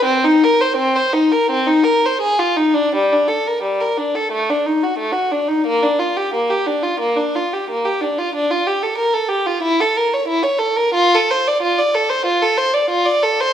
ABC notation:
X:1
M:4/4
L:1/16
Q:1/4=90
K:Cm
V:1 name="Violin"
C E B c C c E B C E B c A F E D | [K:Gm] G, D A B G, B D A A, D E ^F A, F D E | B, D F G B, G D F B, D F G B, G D F | D F G A B A G F =E A B ^c E c A B |
F A c d F d A c F A c d F d A c |]